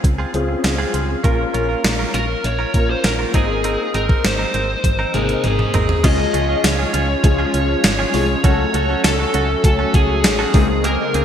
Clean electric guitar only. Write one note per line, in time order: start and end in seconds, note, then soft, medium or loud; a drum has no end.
0.04 muted clean electric guitar stroke soft
0.18 0.32 C4 medium
0.18 0.33 F4 medium
0.18 0.33 G#4 medium
0.34 muted clean electric guitar stroke soft
0.49 muted clean electric guitar stroke soft
0.64 muted clean electric guitar stroke soft
0.78 0.92 C4 medium
0.78 0.93 F4 medium
0.78 0.94 G#4 medium
0.93 1.08 C4 medium
0.93 1.08 F4 medium
0.93 1.07 G#4 medium
1.09 muted clean electric guitar stroke soft
1.23 1.42 C#4 medium
1.23 1.42 F4 medium
1.23 1.43 A#4 medium
1.54 1.68 C#4 medium
1.54 1.68 F4 medium
1.54 1.68 A#4 medium
1.69 1.83 C#4 soft
1.69 1.83 F4 medium
1.69 1.83 A#4 medium
1.84 muted clean electric guitar stroke soft
1.99 2.13 C#4 soft
1.99 2.13 F4 soft
1.99 2.13 A#4 medium
2.14 2.32 C#4 medium
2.14 2.29 F4 medium
2.14 2.28 A#4 medium
2.29 muted clean electric guitar stroke soft
2.44 muted clean electric guitar stroke soft
2.59 2.73 C#4 medium
2.59 2.73 F4 medium
2.59 2.74 A#4 medium
2.74 muted clean electric guitar stroke soft
2.89 muted clean electric guitar stroke soft
3.04 muted clean electric guitar stroke soft
3.19 3.33 C#4 soft
3.19 3.34 F4 medium
3.19 3.33 A#4 medium
3.34 3.52 C4 medium
3.34 3.49 D#4 medium
3.34 3.48 A#4 medium
3.49 muted clean electric guitar stroke soft
3.64 3.82 C4 medium
3.64 3.82 D#4 medium
3.64 3.83 A#4 medium
3.94 4.08 C4 medium
3.94 4.08 D#4 medium
3.94 4.08 A#4 medium
4.09 4.23 C4 soft
4.09 4.23 D#4 medium
4.09 4.23 A#4 medium
4.24 muted clean electric guitar stroke soft
4.39 4.53 C4 soft
4.39 4.54 D#4 medium
4.39 4.53 A#4 medium
4.54 4.72 C4 medium
4.54 4.69 D#4 medium
4.54 4.68 A#4 medium
4.69 muted clean electric guitar stroke soft
4.84 muted clean electric guitar stroke soft
4.99 5.13 C4 medium
4.99 5.13 D#4 medium
4.99 5.14 A#4 medium
5.14 muted clean electric guitar stroke soft
5.29 muted clean electric guitar stroke soft
5.59 muted clean electric guitar stroke soft
5.74 5.92 C4 medium
5.74 5.89 D#4 medium
5.74 5.88 A#4 medium
5.89 muted clean electric guitar stroke soft
6.04 6.22 C#4 medium
6.04 6.22 F4 medium
6.04 6.23 G#4 medium
6.34 6.48 C#4 medium
6.34 6.48 F4 medium
6.34 6.48 G#4 medium
6.49 6.63 C#4 medium
6.49 6.63 F4 medium
6.49 6.63 G#4 medium
6.64 muted clean electric guitar stroke soft
6.79 6.92 C#4 medium
6.79 6.93 F4 medium
6.79 6.93 G#4 medium
6.93 7.12 C#4 medium
6.93 7.09 F4 medium
6.93 7.08 G#4 medium
7.09 muted clean electric guitar stroke soft
7.24 muted clean electric guitar stroke soft
7.38 7.52 C#4 medium
7.38 7.53 F4 medium
7.38 7.53 G#4 medium
7.54 muted clean electric guitar stroke soft
7.69 muted clean electric guitar stroke soft
7.84 muted clean electric guitar stroke soft
7.99 8.13 C#4 medium
7.99 8.13 F4 medium
7.99 8.14 G#4 medium
8.14 8.28 C#4 medium
8.14 8.28 F4 medium
8.14 8.28 G#4 medium
8.29 muted clean electric guitar stroke soft
8.44 8.62 C#4 medium
8.44 8.62 F#4 medium
8.44 8.63 A4 medium
8.74 8.88 C#4 medium
8.74 8.88 F#4 medium
8.74 8.88 A4 medium
8.89 9.03 C#4 medium
8.89 9.03 F#4 medium
8.89 9.03 A4 medium
9.04 muted clean electric guitar stroke soft
9.19 9.33 C#4 medium
9.19 9.33 F#4 medium
9.19 9.33 A4 medium
9.34 9.52 C#4 medium
9.34 9.49 F#4 loud
9.34 9.48 A4 loud
9.49 muted clean electric guitar stroke medium
9.64 muted clean electric guitar stroke soft
9.79 9.93 C#4 medium
9.79 9.93 F#4 medium
9.79 9.94 A4 medium
9.94 muted clean electric guitar stroke soft
10.09 muted clean electric guitar stroke soft
10.24 muted clean electric guitar stroke soft
10.39 10.54 C#4 medium
10.39 10.54 F#4 medium
10.39 10.55 A4 medium
10.54 10.68 A#3 medium
10.54 10.69 C4 medium
10.54 10.68 G#4 medium
10.84 11.02 A#3 medium
10.84 11.03 C4 medium
10.84 11.03 G#4 medium
11.14 11.25 A#3 medium
11.14 11.25 C4 medium
11.14 11.25 G#4 medium